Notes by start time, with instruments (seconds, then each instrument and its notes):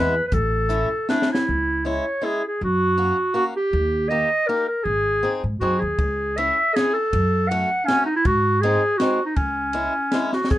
Already playing: upright bass E2, steel-string acoustic guitar G#3 B3 E4, clarinet B4
0.27 clarinet B4
0.32 upright bass A1, clarinet A4, kick, closed hi-hat
0.69 steel-string acoustic guitar A3 C#4 E4, closed hi-hat
1.09 steel-string acoustic guitar A3 C#4 E4, clarinet D4, snare
1.22 snare
1.31 clarinet E4, snare
1.48 upright bass C#2
1.85 steel-string acoustic guitar G#3 C#4 E4, clarinet C#5
2.21 steel-string acoustic guitar G#3 C#4 E4, clarinet G#4
2.47 clarinet G#4
2.61 upright bass F#2, clarinet F#4
2.97 steel-string acoustic guitar A#3 C#4 F#4
3.34 steel-string acoustic guitar A#3 C#4 F#4, clarinet F#4
3.56 clarinet G4
3.73 upright bass D#2
4.09 steel-string acoustic guitar A#3 D#4 G4, clarinet D#5
4.47 steel-string acoustic guitar A#3 D#4 G4, clarinet A#4
4.68 clarinet A#4
4.84 upright bass G#1, clarinet G#4
5.23 steel-string acoustic guitar C4 D#4 G#4
5.44 upright bass G#2
5.60 upright bass F#2, steel-string acoustic guitar C4 D#4 G#4, clarinet F#4
5.79 upright bass D#2, clarinet G#4
5.99 upright bass C#2, kick, ride
6.37 steel-string acoustic guitar C#4 E4 G#4, clarinet E5, ride
6.75 steel-string acoustic guitar C#4 E4 G#4, clarinet G#4, snare, ride
6.94 clarinet A4
7.13 upright bass F#2, kick, ride
7.48 steel-string acoustic guitar A3 C#4 F#4, clarinet F#5, ride
7.86 steel-string acoustic guitar A3, clarinet C#4, snare, ride
7.90 steel-string acoustic guitar C#4 F#4
8.06 clarinet D#4
8.16 clarinet E4
8.25 upright bass G#2, clarinet F#4, kick, ride
8.61 steel-string acoustic guitar G#3 C4, clarinet G#4, ride
8.65 steel-string acoustic guitar D#4
8.97 steel-string acoustic guitar G#3 C4 D#4, clarinet F#4, snare, ride
9.26 clarinet D#4
9.36 upright bass C#2, clarinet C#4, kick, ride
9.73 steel-string acoustic guitar G#3 C#4 E4, ride
10.12 steel-string acoustic guitar G#3 C#4 E4, snare, ride
10.33 clarinet F#4, snare
10.44 snare
10.50 upright bass E2, clarinet G#4, kick, closed hi-hat